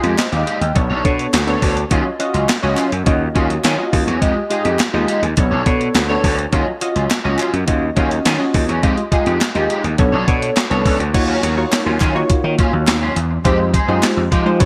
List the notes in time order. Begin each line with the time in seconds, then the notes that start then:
Already playing: G#3 F4 G4 D#5
0.03 F2 G#3 D#4 G4, closed hi-hat
0.18 C5 D#5, muted clean electric guitar stroke, snare, clap, closed hi-hat
0.32 D#2 G#3 D#4 G4 D5 F5, closed hi-hat
0.46 G#3 D#4 G4, closed hi-hat
0.61 D#2 D#5 G5, muted clean electric guitar stroke, closed hi-hat
0.75 B1 B3 D4 A4 C#5, muted clean electric guitar stroke, kick, closed hi-hat
0.90 B1 D4 A4 C#5
1.04 B2 B3 D4 A4 C#5, muted clean electric guitar stroke, kick, closed hi-hat
1.19 muted clean electric guitar stroke, closed hi-hat
1.33 D2, muted clean electric guitar stroke, snare, clap, closed hi-hat
1.47 B3 D4 A4 C#5, closed hi-hat
1.62 D2 D4 A4 C#5, kick, open hi-hat
1.77 muted clean electric guitar stroke, closed hi-hat
1.90 D#2 F#3 C#4 F4 F#4 D#5, kick, closed hi-hat
2.05 muted clean electric guitar stroke
2.19 C#4 F4 F#4 D#5, muted clean electric guitar stroke, closed hi-hat
2.34 C#2 F#3 C#4 F4, closed hi-hat
2.48 muted clean electric guitar stroke, snare, clap, closed hi-hat
2.62 C#2 F#3 C#4 F4 F#4 D#5
2.77 F#3 C#4 F4, clap, closed hi-hat
2.91 F#2, muted clean electric guitar stroke, closed hi-hat
3.06 D#2 C#4 F4 F#4 D#5, muted clean electric guitar stroke, kick, closed hi-hat
3.20 muted clean electric guitar stroke
3.35 D#2 F#3 C#4 F4 F#4 D#5, kick, closed hi-hat
3.49 muted clean electric guitar stroke, closed hi-hat
3.64 D#3 F#3 C#4 F4, snare, clap, closed hi-hat
3.78 C#4 F4 F#4 D#5, muted clean electric guitar stroke
3.93 D#2, muted clean electric guitar stroke, kick, open hi-hat
4.07 E2 F#3 C#4 F#4, closed hi-hat
4.21 F2 G#3 D#4 F4 G4 D#5, kick, closed hi-hat
4.36 muted clean electric guitar stroke
4.50 G#3 D#4 F4 G4 G#4 D#5, closed hi-hat
4.65 F2 G#3 D#4 G4, closed hi-hat
4.79 muted clean electric guitar stroke, snare, clap, closed hi-hat
4.81 clap
4.93 D#2 G#3 D#4 F4 G4 D#5
5.07 G#3 D#4 G4, closed hi-hat
5.22 D#2, muted clean electric guitar stroke, closed hi-hat
5.37 B1 B3 D4 A4 C#5, muted clean electric guitar stroke, kick, closed hi-hat
5.51 B1 D4 A4 C#5
5.66 B2 B3 D4 A4 C#5, muted clean electric guitar stroke, kick, closed hi-hat
5.80 muted clean electric guitar stroke, closed hi-hat
5.94 D2, muted clean electric guitar stroke, snare, clap, closed hi-hat
6.09 B3 D4 A4 C#5
6.23 D2 D4 A4 C#5, kick, open hi-hat
6.38 muted clean electric guitar stroke, closed hi-hat
6.52 D#2 F#3 C#4 F4 F#4 D#5, kick, closed hi-hat
6.67 muted clean electric guitar stroke
6.81 C#4 F4 F#4 D#5, muted clean electric guitar stroke, closed hi-hat
6.95 C#2 F#3 C#4 F4, closed hi-hat
7.10 muted clean electric guitar stroke, snare, clap, closed hi-hat
7.24 C#2 F#3 C#4 F4 F#4 D#5
7.39 F#3 C#4 F4, clap, closed hi-hat
7.53 F#2, muted clean electric guitar stroke, closed hi-hat
7.67 D#2 C#4 F4 F#4 D#5, muted clean electric guitar stroke, kick, closed hi-hat
7.82 muted clean electric guitar stroke
7.96 D#2 F#3 C#4 F4 F#4 D#5, kick, closed hi-hat
8.11 muted clean electric guitar stroke, closed hi-hat
8.25 D#3 F#3 C#4 F4, snare, clap, closed hi-hat
8.39 C#4 F4 F#4 D#5, muted clean electric guitar stroke
8.54 D#2, muted clean electric guitar stroke, kick, open hi-hat
8.69 E2 F#3 C#4 F#4, closed hi-hat
8.83 F2 G#3 D#4 F4 G4 D#5, kick, closed hi-hat
8.97 muted clean electric guitar stroke, closed hi-hat
9.12 G#3 D#4 F4 G4 G#4 D#5, kick, closed hi-hat
9.26 F2 G#3 D#4 G4, closed hi-hat
9.41 muted clean electric guitar stroke, snare, clap, closed hi-hat
9.55 D#2 G#3 D#4 F4 G4 D#5, closed hi-hat
9.69 G#3 D#4 G4, closed hi-hat
9.84 D#2, muted clean electric guitar stroke, closed hi-hat
9.98 B1 B3 D4 A4 C#5, muted clean electric guitar stroke, kick, closed hi-hat
10.12 B1 D4 A4 C#5
10.27 B2 B3 D4 A4 C#5, muted clean electric guitar stroke, kick, closed hi-hat
10.42 muted clean electric guitar stroke, closed hi-hat
10.56 muted clean electric guitar stroke, snare, clap, closed hi-hat
10.70 C2 B3 D4 A4 C#5, closed hi-hat
10.85 C#2 D4 A4 C#5, kick, open hi-hat
10.99 D2, muted clean electric guitar stroke, closed hi-hat
11.14 D#2 A#3 D#4 F4 F#4 C#5, muted clean electric guitar stroke, kick, closed hi-hat, crash
11.28 F#3 C#4 F#4
11.42 D#2 F#3 C#4 F#4, closed hi-hat
11.57 A#3 D#4 F4 F#4 C#5, muted clean electric guitar stroke
11.71 muted clean electric guitar stroke, snare, clap, closed hi-hat
11.86 D#2 F#3 C#4 F4
12.00 D#3 F#3 C#4 F4, kick, clap, closed hi-hat
12.15 A#3 D#4 F4 F#4 C#5, muted clean electric guitar stroke
12.29 muted clean electric guitar stroke, muted slap bass stroke, kick, closed hi-hat
12.44 D#3, muted clean electric guitar stroke
12.58 F#3 C#4 F4, kick, closed hi-hat
12.73 D#2, muted clean electric guitar stroke
12.87 D#2, muted clean electric guitar stroke, snare, clap, closed hi-hat
13.02 F#3 C#4 F4
13.16 E2, muted clean electric guitar stroke, closed hi-hat
13.31 muted clean electric guitar stroke
13.44 F2 G#3 D#4 F4 G4 C5, kick, closed hi-hat
13.59 muted clean electric guitar stroke
13.73 G#3 D#4 G#4, kick, closed hi-hat
13.88 F#2 G#3 D#4 F4 G4 G#4 C5
14.03 muted clean electric guitar stroke, snare, clap, closed hi-hat
14.04 clap
14.17 F2, muted clean electric guitar stroke
14.31 F3 G#3 D#4 G4, kick, closed hi-hat
14.45 G#3 D#4 F4 G4 C5, muted clean electric guitar stroke
14.60 B1 B3 D4 F#4 A4 C#5, muted clean electric guitar stroke, kick, closed hi-hat